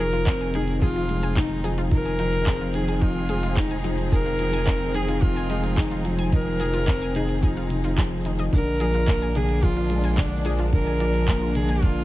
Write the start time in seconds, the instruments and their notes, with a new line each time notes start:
Already playing: analog synth bass F1, felt piano D#3, string section F3 C4 D#4 G#4, viola A#4
0.00 felt piano F3
0.13 synth arpeggio sound F4, closed hi-hat
0.27 felt piano C4, kick, clap, closed hi-hat
0.41 synth arpeggio sound G#5
0.54 felt piano D#3, synth arpeggio sound D#4, viola G#4, closed hi-hat
0.68 closed hi-hat
0.81 felt piano F3, viola F4, synth arpeggio sound G#4, kick, closed hi-hat
0.96 synth arpeggio sound F4
1.09 felt piano G#3, closed hi-hat
1.23 synth arpeggio sound G#5, closed hi-hat
1.36 felt piano D#3, synth arpeggio sound D#4, viola D#4, kick, clap, closed hi-hat
1.64 felt piano F3, synth arpeggio sound G#4, closed hi-hat
1.78 synth arpeggio sound F4, closed hi-hat
1.91 felt piano D#3, viola A#4, kick, closed hi-hat
2.05 synth arpeggio sound G#5
2.19 felt piano F3, synth arpeggio sound D#4, closed hi-hat
2.33 closed hi-hat
2.47 felt piano C4, synth arpeggio sound G#4, kick, clap, closed hi-hat
2.61 synth arpeggio sound F4
2.74 felt piano D#3, viola G#4, closed hi-hat
2.88 synth arpeggio sound G#5, closed hi-hat
3.01 felt piano F3, synth arpeggio sound D#4, viola F4, kick, closed hi-hat
3.29 felt piano G#3, synth arpeggio sound G#4, closed hi-hat
3.43 synth arpeggio sound F4, closed hi-hat
3.56 felt piano D#3, viola D#4, kick, clap, closed hi-hat
3.71 synth arpeggio sound G#5
3.84 felt piano F3, synth arpeggio sound D#4, closed hi-hat
3.98 closed hi-hat
4.12 felt piano D#3, synth arpeggio sound G#4, viola A#4, kick, closed hi-hat
4.26 synth arpeggio sound F4
4.39 felt piano F3, closed hi-hat
4.53 synth arpeggio sound G#5, closed hi-hat
4.67 felt piano C4, synth arpeggio sound D#4, kick, clap, closed hi-hat
4.94 felt piano D#3, viola G#4, synth arpeggio sound G#4, closed hi-hat
5.08 synth arpeggio sound F4, closed hi-hat
5.22 felt piano F3, viola F4, kick, closed hi-hat
5.36 synth arpeggio sound G#5
5.50 felt piano G#3, synth arpeggio sound D#4, closed hi-hat
5.64 closed hi-hat
5.77 felt piano D#3, viola D#4, synth arpeggio sound G#4, kick, clap, closed hi-hat
5.91 synth arpeggio sound F4
6.05 felt piano F3, closed hi-hat
6.18 synth arpeggio sound G#5, closed hi-hat
6.32 felt piano D#3, synth arpeggio sound D#4, viola A#4, kick, closed hi-hat
6.60 felt piano F3, synth arpeggio sound G#4, closed hi-hat
6.74 synth arpeggio sound F4, closed hi-hat
6.87 felt piano C4, kick, clap, closed hi-hat
7.02 synth arpeggio sound G#5
7.15 felt piano D#3, synth arpeggio sound D#4, viola G#4, closed hi-hat
7.29 closed hi-hat
7.42 felt piano F3, viola D#4, synth arpeggio sound G#4, kick, closed hi-hat
7.57 synth arpeggio sound F4
7.70 felt piano D#3, closed hi-hat
7.84 synth arpeggio sound F4, closed hi-hat
7.97 felt piano F3, synth arpeggio sound G#4, kick, clap, closed hi-hat
8.25 felt piano D#3, synth arpeggio sound D#4, closed hi-hat
8.39 synth arpeggio sound D#5, closed hi-hat
8.53 analog synth bass A#1, felt piano D3, string section G#3 A#3 D4, synth arpeggio sound D4, viola A#4, kick, closed hi-hat
8.80 felt piano F3, synth arpeggio sound G#4, closed hi-hat
8.94 synth arpeggio sound F4, closed hi-hat
9.08 felt piano A#3, kick, clap, closed hi-hat
9.22 synth arpeggio sound G#5
9.35 felt piano D3, synth arpeggio sound D4, viola G#4, closed hi-hat
9.49 closed hi-hat
9.63 felt piano F3, viola F4, synth arpeggio sound G#4, kick, closed hi-hat
9.77 synth arpeggio sound F4
9.90 felt piano G#3, closed hi-hat
10.04 synth arpeggio sound G#5, closed hi-hat
10.17 felt piano D3, synth arpeggio sound D4, viola D4, kick, clap, closed hi-hat
10.45 felt piano F3, synth arpeggio sound G#4, closed hi-hat
10.59 synth arpeggio sound F4, closed hi-hat
10.72 felt piano D3, viola A#4, kick, closed hi-hat
10.87 synth arpeggio sound G#5
11.00 felt piano F3, synth arpeggio sound D4, closed hi-hat
11.14 closed hi-hat
11.28 felt piano A#3, synth arpeggio sound G#4, kick, clap, closed hi-hat
11.42 synth arpeggio sound F4
11.55 felt piano D3, viola G#4, closed hi-hat
11.69 synth arpeggio sound G#5, closed hi-hat
11.82 felt piano F3, synth arpeggio sound D4, viola F4, kick, closed hi-hat